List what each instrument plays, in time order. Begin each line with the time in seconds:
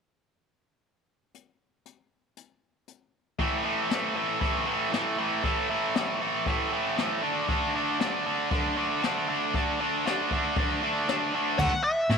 1.34 closed hi-hat
1.86 closed hi-hat
2.37 closed hi-hat
2.88 closed hi-hat
3.39 distorted electric guitar A2 E3 A3, kick, open hi-hat
3.64 distorted electric guitar A2 E3 A3
3.89 distorted electric guitar A2 E3 A3, snare, open hi-hat
4.15 distorted electric guitar A2 E3 A3
4.40 distorted electric guitar A2 E3 A3, kick, open hi-hat
4.66 distorted electric guitar A2 E3 A3
4.91 distorted electric guitar A2 E3 A3, snare, open hi-hat
5.18 distorted electric guitar A2 E3 A3
5.43 distorted electric guitar A2 E3 A3, kick, open hi-hat
5.69 distorted electric guitar A2 E3 A3
5.95 distorted electric guitar A2 E3 A3, snare, open hi-hat
6.21 distorted electric guitar A2 E3 A3
6.46 distorted electric guitar A2 E3 A3, kick, open hi-hat
6.72 distorted electric guitar A2 E3 A3
6.97 distorted electric guitar A2 E3 A3, snare, open hi-hat
7.23 distorted electric guitar D3 A3 D4
7.48 distorted electric guitar D3 A3 D4, kick, open hi-hat
7.74 distorted electric guitar D3 A3 D4
7.99 distorted electric guitar D3 A3 D4, snare, open hi-hat
8.26 distorted electric guitar D3 A3 D4
8.51 distorted electric guitar D3 A3 D4, kick, open hi-hat
8.77 distorted electric guitar D3 A3 D4
9.02 distorted electric guitar D3 A3 D4, snare, open hi-hat
9.28 distorted electric guitar D3 A3 D4
9.54 distorted electric guitar D3 A3 D4, kick, open hi-hat
9.80 distorted electric guitar D3 A3 D4
10.05 distorted electric guitar D3 A3 D4, snare, open hi-hat
10.31 distorted electric guitar D3 A3 D4, kick
10.56 distorted electric guitar D3 A3 D4, kick, open hi-hat
10.82 distorted electric guitar D3 A3 D4
11.08 distorted electric guitar D3 A3 D4, snare, open hi-hat
11.34 distorted electric guitar D3 A3 D4
11.59 fingered electric bass D2, distorted electric guitar D3 A3, lead electric guitar F#5, kick, crash
11.71 muted fingered electric bass stroke, muted distorted electric guitar stroke
11.84 lead electric guitar E5, open hi-hat
12.09 fingered electric bass A2, distorted electric guitar A3 E4, snare, open hi-hat